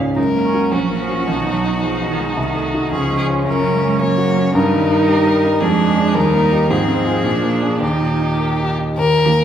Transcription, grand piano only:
Already playing: C#2 G#2 G#3 C#4 G#4
0.16 F#2
0.35 A#3
0.54 C#4 F#4
0.72 A#1
0.91 A#3
1.10 C#4 F#4
1.28 B1
1.46 B2
1.64 D#4
1.83 G#4
2.01 D#4
2.20 G#3
2.37 C2
2.55 A3
2.74 D#4 F#4
2.92 C#2
3.10 G#3
3.28 C#4 F4
3.45 F#2
3.63 C#3
3.82 C#4
4.00 A#4
4.18 F#4
4.37 C#4
4.55 G2
4.74 D#3
4.91 D#4
5.09 G4
5.27 A#4
5.44 D#4
5.62 F2
5.80 G#3
5.97 D4 G#4
6.15 D#2
6.33 A#3
6.53 D#4 G4
6.70 G#2
6.88 C4
7.06 F4 G#4
7.24 A#2
7.43 A#3
7.62 D4 G#4
7.81 D#2
8.00 A#2
8.20 D#4
8.40 A#4
8.60 G4
8.79 D#4
8.98 D#2
9.26 A#3

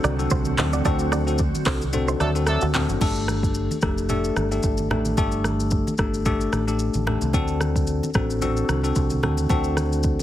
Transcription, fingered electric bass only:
0.04 C2
0.31 C2
0.58 D2
0.85 D2
1.66 C2
2.20 D2
2.62 D2
2.89 F#1
3.01 G1
3.83 F1
4.37 G1
4.64 G1
4.91 A1
5.18 G1
5.99 G1
6.53 A1
6.95 A1
7.22 C2
7.34 D2
8.15 A1
8.69 C2
8.96 C2
9.23 D2
9.50 D2

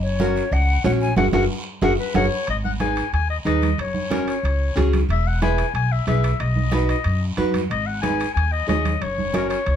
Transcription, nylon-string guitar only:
0.20 C#4 F#4 A#4
0.84 C#4 F#4 C#5
1.17 F#4 G#4 A#4
1.33 F#4 G#4 A#4
1.83 F#4 G#4 A#4
2.15 F#4 G#4 A#4
2.80 D#4 G#4 B4
3.45 D#4 G#4 B4
4.10 C#4 F#4 A#4
4.76 C#4 F#4 G#4
5.42 E4 G#4 B4
6.07 E4 G#4 B4
6.72 D#4 F#4 B4
7.37 D#4 F#4 B4
8.02 D#4 G#4 B4
8.67 D#4 G#4 C#5
9.33 C#4 F#4 A#4

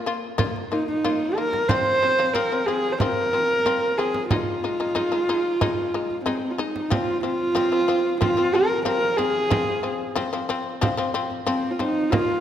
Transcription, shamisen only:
0.06 A#3 F4
0.38 A#3 F4
0.72 A#3 F4
1.04 A#3 F4
1.38 A#3 F4
1.70 F3 C4
2.03 F3 C4
2.19 F3 C4
2.35 F3 C4
2.52 F3 C4
2.68 F3 C4
3.01 F3 C4
3.33 F3 C4
3.66 F3 C4
3.99 F3 C4
4.31 G#3 D#4
4.64 G#3 D#4
4.80 G#3 D#4
4.95 G#3 D#4
5.12 G#3 D#4
5.29 G#3 D#4
5.61 G#3 D#4
5.94 G#3 D#4
6.26 G#3 D#4
6.58 G#3 D#4
6.90 F3 C4
7.23 F3 C4
7.55 F3 C4
7.72 F3 C4
7.88 F3 C4
8.21 F3 C4
8.37 F3 C4
8.54 F3 C4
8.85 F3 C4
9.18 F3 C4
9.50 F3 C4
9.83 F3 C4
10.16 F3 C4
10.33 F3 C4
10.49 F3 C4
10.81 F3 C4
10.97 F3 C4
11.14 F3 C4
11.46 F3 C4
11.79 F3 C4
12.12 D#3 A#3

